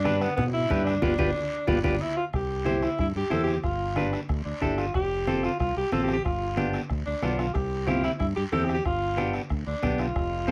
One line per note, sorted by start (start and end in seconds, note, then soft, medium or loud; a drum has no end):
0.00 0.25 G2 medium
0.00 0.22 D4 medium
0.04 0.28 D4 medium
0.04 0.28 G4 medium
0.04 0.28 B4 medium
0.04 bombo rim medium
0.04 high conga medium
0.04 short guiro medium
0.21 0.36 B3 medium
0.21 bombo rim medium
0.21 short guiro medium
0.36 0.64 B2 loud
0.36 0.44 B3 medium
0.36 bombo rim medium
0.36 high conga soft
0.36 low conga medium
0.36 long guiro medium
0.53 0.84 E4 loud
0.70 0.97 G2 medium
0.70 0.93 D4 medium
0.70 0.93 G4 medium
0.70 0.94 B4 medium
0.70 bombo low medium
0.70 bombo rim medium
0.70 high conga medium
0.70 short guiro medium
0.85 1.79 D4 medium
0.85 bombo rim medium
0.85 short guiro medium
1.02 1.15 G1 loud
1.02 1.13 F4 loud
1.02 1.13 G4 medium
1.02 1.13 B4 medium
1.02 bombo low loud
1.02 high conga loud
1.02 long guiro medium
1.18 1.32 G1 medium
1.18 1.30 F4 medium
1.18 1.30 G4 medium
1.18 1.30 B4 medium
1.18 bombo low loud
1.18 high conga loud
1.18 long guiro medium
1.67 1.80 G1 loud
1.67 1.78 F4 loud
1.67 1.78 G4 medium
1.67 1.78 B4 medium
1.67 bombo low medium
1.67 high conga loud
1.67 long guiro loud
1.83 1.97 G1 medium
1.83 2.02 D4 medium
1.83 1.95 F4 medium
1.83 1.95 G4 loud
1.83 1.95 B4 medium
1.83 bombo low medium
1.83 high conga medium
1.83 long guiro loud
2.01 2.16 E4 medium
2.17 2.24 F4 medium
2.33 2.86 C2 medium
2.33 2.85 G4 medium
2.33 bombo low medium
2.33 bombo rim medium
2.33 high conga soft
2.33 long guiro medium
2.65 2.88 E4 medium
2.65 2.89 G4 medium
2.65 2.89 C5 medium
2.65 bombo rim medium
2.65 high conga medium
2.65 short guiro medium
2.82 2.99 E4 medium
2.82 bombo rim medium
2.82 short guiro medium
2.98 3.12 G2 medium
2.98 3.07 E4 medium
2.98 bombo low medium
2.98 bombo rim medium
2.98 high conga soft
2.98 long guiro medium
3.16 3.22 G2 medium
3.16 3.34 G4 medium
3.30 3.57 E2 medium
3.30 3.54 E4 medium
3.30 3.54 G4 medium
3.30 3.43 A4 medium
3.30 3.54 C5 medium
3.30 bombo rim medium
3.30 high conga medium
3.30 short guiro medium
3.44 3.48 G4 medium
3.44 bombo rim medium
3.48 short guiro medium
3.53 3.58 G4 medium
3.63 4.16 G1 medium
3.63 4.10 F4 medium
3.63 bombo low medium
3.63 bombo rim medium
3.63 high conga soft
3.63 long guiro medium
3.96 4.19 D4 medium
3.96 4.20 G4 soft
3.96 4.20 B4 medium
3.96 bombo rim medium
3.96 high conga medium
3.96 short guiro medium
4.13 bombo rim medium
4.13 short guiro medium
4.28 4.42 D2 medium
4.28 bombo low medium
4.28 bombo rim medium
4.28 high conga soft
4.28 long guiro medium
4.45 4.52 D2 medium
4.45 4.61 D4 medium
4.61 4.88 G1 medium
4.61 4.84 D4 medium
4.61 4.77 E4 medium
4.61 4.85 G4 medium
4.61 4.85 A4 medium
4.61 bombo low medium
4.61 bombo rim medium
4.61 high conga medium
4.61 short guiro medium
4.77 4.93 F4 medium
4.77 bombo rim medium
4.77 short guiro medium
4.94 5.47 F1 medium
4.94 5.40 G4 medium
4.94 bombo low medium
4.94 bombo rim medium
4.94 high conga soft
4.94 long guiro medium
5.27 5.50 C4 medium
5.27 5.50 F4 medium
5.27 5.51 A4 medium
5.27 bombo rim medium
5.27 high conga medium
5.27 short guiro medium
5.43 5.59 F4 medium
5.43 bombo rim medium
5.43 short guiro medium
5.60 5.73 C2 medium
5.60 5.75 F4 medium
5.60 bombo low medium
5.60 bombo rim medium
5.60 high conga soft
5.60 long guiro medium
5.76 5.83 C2 medium
5.76 5.92 G4 medium
5.92 6.19 A1 medium
5.92 6.15 C4 medium
5.92 6.16 F4 medium
5.92 6.03 A4 medium
5.92 6.16 A4 medium
5.92 bombo rim medium
5.92 high conga medium
5.92 short guiro medium
6.03 6.13 G4 medium
6.08 bombo rim medium
6.08 short guiro medium
6.13 6.24 G4 loud
6.25 6.77 G1 medium
6.25 6.71 F4 medium
6.25 bombo low medium
6.25 bombo rim medium
6.25 high conga soft
6.25 long guiro medium
6.57 6.80 B3 medium
6.57 6.80 D4 medium
6.57 6.81 G4 medium
6.57 bombo rim medium
6.57 high conga medium
6.57 short guiro medium
6.73 bombo rim medium
6.73 short guiro medium
6.89 7.03 D2 medium
6.89 bombo low medium
6.89 bombo rim medium
6.89 high conga soft
6.89 long guiro medium
7.06 7.13 D2 medium
7.06 7.40 D4 medium
7.22 7.49 B1 medium
7.22 7.46 B3 medium
7.22 7.46 D4 medium
7.22 7.46 F4 medium
7.22 bombo rim medium
7.22 high conga medium
7.22 short guiro medium
7.39 7.53 F4 medium
7.39 bombo rim medium
7.39 short guiro medium
7.54 8.07 C2 medium
7.54 7.89 G4 medium
7.54 bombo low medium
7.54 bombo rim medium
7.54 high conga soft
7.54 long guiro medium
7.87 8.10 C4 medium
7.87 8.11 E4 medium
7.87 8.03 F4 medium
7.87 8.11 G4 medium
7.87 bombo rim medium
7.87 high conga medium
7.87 short guiro medium
8.03 8.11 E4 medium
8.03 bombo rim medium
8.03 short guiro medium
8.19 8.33 G2 medium
8.19 8.27 E4 medium
8.19 bombo low medium
8.19 bombo rim medium
8.19 high conga soft
8.19 long guiro medium
8.36 8.44 G2 medium
8.36 8.43 G4 medium
8.52 8.79 E2 medium
8.52 8.76 C4 medium
8.52 8.76 E4 medium
8.52 8.76 G4 medium
8.52 8.65 A4 medium
8.52 bombo rim medium
8.52 high conga medium
8.52 short guiro medium
8.64 8.74 G4 medium
8.69 bombo rim medium
8.69 short guiro medium
8.74 8.85 G4 medium
8.85 9.38 G1 medium
8.85 9.31 F4 medium
8.85 bombo low medium
8.85 bombo rim medium
8.85 high conga soft
8.85 long guiro medium
9.17 9.40 B3 medium
9.17 9.41 D4 medium
9.17 9.41 G4 medium
9.17 bombo rim medium
9.17 high conga medium
9.17 short guiro medium
9.33 bombo rim medium
9.33 short guiro medium
9.50 9.63 D2 medium
9.50 bombo low medium
9.50 bombo rim medium
9.50 high conga soft
9.50 long guiro medium
9.67 9.74 D2 medium
9.67 10.01 D4 medium
9.82 10.09 B1 medium
9.82 10.06 B3 medium
9.82 10.06 D4 medium
9.82 10.06 G4 medium
9.82 bombo low medium
9.82 bombo rim medium
9.82 high conga medium
9.82 short guiro medium
9.98 10.51 F4 medium
9.98 bombo rim medium
9.98 short guiro medium
10.16 10.51 F1 medium
10.16 bombo low medium
10.16 bombo rim medium
10.16 high conga soft
10.16 long guiro medium
10.48 10.51 C4 medium
10.48 high conga medium
10.48 short guiro medium